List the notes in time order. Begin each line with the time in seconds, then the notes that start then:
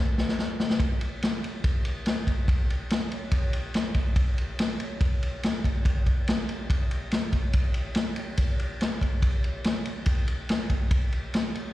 0.18 snare
0.29 snare
0.39 snare
0.60 snare
0.70 snare
0.80 kick, ride
1.01 ride
1.22 snare, ride
1.44 ride
1.64 kick, ride
1.85 ride
2.06 snare, ride
2.27 kick, ride
2.48 kick, ride
2.70 ride
2.90 snare, ride
3.12 ride
3.31 kick, ride
3.53 ride
3.74 snare, ride
3.94 kick, ride
4.16 kick, ride
4.38 ride
4.59 snare, ride
4.80 ride
5.01 kick, ride
5.23 ride
5.43 snare, ride
5.64 kick, ride
5.85 kick, ride
6.06 kick, ride
6.28 snare, ride
6.49 ride
6.70 kick, ride
6.91 ride
7.11 snare, ride
7.33 kick, ride
7.53 kick, ride
7.74 ride
7.95 snare, ride
8.16 ride
8.37 kick, ride
8.59 ride
8.81 snare, ride
9.01 kick, ride
9.22 kick, ride
9.44 ride
9.64 snare, ride
9.85 ride
10.06 kick, ride
10.28 ride
10.49 snare, ride
10.70 kick, ride
10.91 kick, ride
11.12 ride
11.34 snare, ride
11.55 ride